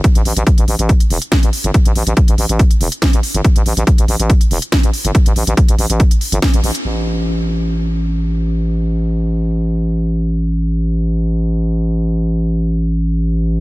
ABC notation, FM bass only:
X:1
M:4/4
L:1/16
Q:1/4=141
K:C
V:1 name="FM bass" clef=bass
z A,,, A,,, A,,, z A,,, A,,, A,,, z2 E,,, z2 A,,, z G,,, | z A,,, A,,, A,,, z A,,, A,,, A,,, z2 E,,, z2 A,,, z G,,, | z A,,, A,,, A,,, z A,,, A,,, A,,, z2 E,,, z2 A,,, z G,,, | z A,,, A,,, A,,, z A,,, A,,, A,,, z3 G,,, z A,,, A,,, z |
A,,,16- | A,,,16- | A,,,16- | A,,,16 |]